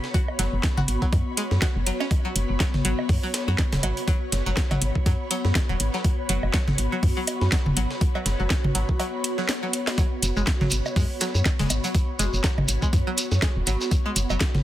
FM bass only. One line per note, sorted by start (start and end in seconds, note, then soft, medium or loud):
0.39 0.48 F#1 loud
0.53 0.60 F#1 medium
0.77 0.85 G#1 medium
0.88 0.97 G#1 medium
1.13 1.22 F#2 medium
1.51 1.58 F#2 medium
1.76 1.91 F#1 loud
2.36 2.45 F#1 loud
2.50 2.57 F#1 medium
2.74 2.81 G#1 medium
2.85 2.94 G#1 medium
3.09 3.19 F#2 medium
3.48 3.55 F#2 medium
3.73 3.80 E1 loud
3.83 3.93 G#1 loud
4.32 4.42 F#1 loud
4.46 4.54 F#1 medium
4.71 4.78 G#1 medium
4.82 4.91 G#1 medium
5.06 5.16 F#2 medium
5.45 5.52 F#2 medium
5.69 5.76 E1 loud
5.80 5.89 G#1 loud
6.29 6.39 F#1 loud
6.43 6.50 F#1 medium
6.68 6.75 G#1 medium
6.78 6.88 G#1 medium
7.03 7.12 F#2 medium
7.41 7.49 F#2 medium
7.66 7.73 E1 loud
7.77 7.86 G#1 loud
8.26 8.35 F#1 loud
8.40 8.47 F#1 medium
8.64 8.71 G#1 medium
8.75 8.84 G#1 medium
10.22 10.32 F#1 loud
10.36 10.44 F#1 medium
10.61 10.68 G#1 loud
10.72 10.81 G#1 medium
10.96 11.06 F#2 medium
11.35 11.42 F#2 medium
11.59 11.67 E1 loud
11.70 11.79 G#1 medium
12.19 12.29 F#1 loud
12.33 12.40 F#1 medium
12.58 12.65 G#1 medium
12.68 12.78 G#1 medium
12.93 13.02 F#2 medium
13.32 13.39 F#2 medium
13.56 13.63 E1 loud
13.67 13.76 G#1 loud
14.16 14.25 F#1 loud
14.30 14.37 F#1 medium
14.54 14.62 G#1 medium